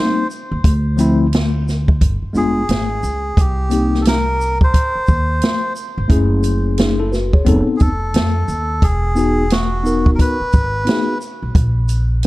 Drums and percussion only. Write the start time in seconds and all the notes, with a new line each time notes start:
0.31 shaker
0.64 kick, closed hi-hat
0.99 closed hi-hat, shaker
1.33 snare, closed hi-hat
1.68 snare, shaker
1.88 kick
2.01 kick, closed hi-hat
2.35 shaker
2.69 snare, closed hi-hat
3.03 shaker
3.37 kick, closed hi-hat
3.71 closed hi-hat, shaker
3.95 snare
4.05 snare, closed hi-hat
4.41 shaker
4.61 kick
4.74 kick, closed hi-hat
5.07 kick, shaker
5.42 snare, closed hi-hat
5.76 shaker
6.10 kick, closed hi-hat
6.44 closed hi-hat, shaker
6.78 snare, closed hi-hat
7.13 snare, shaker
7.33 kick
7.46 kick, closed hi-hat
7.80 kick, closed hi-hat, shaker
8.14 snare, closed hi-hat
8.48 shaker
8.82 kick, closed hi-hat
9.16 shaker
9.50 snare, closed hi-hat
9.86 shaker
10.06 kick
10.19 kick, closed hi-hat
10.53 kick, closed hi-hat, shaker
10.87 snare, closed hi-hat
11.21 shaker
11.55 kick, closed hi-hat
11.89 closed hi-hat, shaker
12.23 closed hi-hat